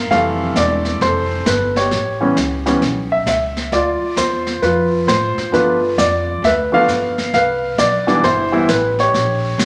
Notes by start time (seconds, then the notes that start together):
0.11 F1 E3 G3 A3 C4 A4 F5, brush sweep, snare
0.56 E1 D5, snare, hi-hat pedal
0.85 snare
1.01 F1 A4 C5, brush sweep, snare
1.46 G1 B4, snare, hi-hat pedal
1.76 G4 C#5, snare
1.91 A1, brush sweep, snare
2.21 E3 G3 B3 C#4
2.36 C#2, snare, hi-hat pedal
2.66 E3 G3 B3 C#4, snare
2.81 B1, brush sweep, snare
3.12 E5
3.26 C#2 E5, snare, hi-hat pedal
3.57 snare
3.71 D2 F4 D5, brush sweep, snare
4.01 muted upright bass stroke
4.16 E2 C5, snare, hi-hat pedal
4.47 snare
4.62 F2 F4 B4, brush sweep, snare
5.07 A2 C5, snare, hi-hat pedal
5.36 muted upright bass stroke, snare
5.52 G2 F3 A3 B3 D4 F4 B4, brush sweep, snare
5.97 F2 D5, snare, hi-hat pedal
6.42 D2 B4 E5, brush sweep, snare
6.72 F3 A3 B3 D4 B4 F5
6.88 G1, snare, hi-hat pedal
7.18 snare
7.33 C2 B4 F5, brush sweep, snare
7.78 B1 D5, snare, hi-hat pedal
8.07 E3 G3 B3 D4, snare
8.23 G1 E4 C5, brush sweep, snare
8.52 E3 G3 B3 E4
8.68 A1 B4, snare, hi-hat pedal
8.99 G4 C#5, snare
9.13 A#1, brush sweep, snare
9.58 C2, snare, hi-hat pedal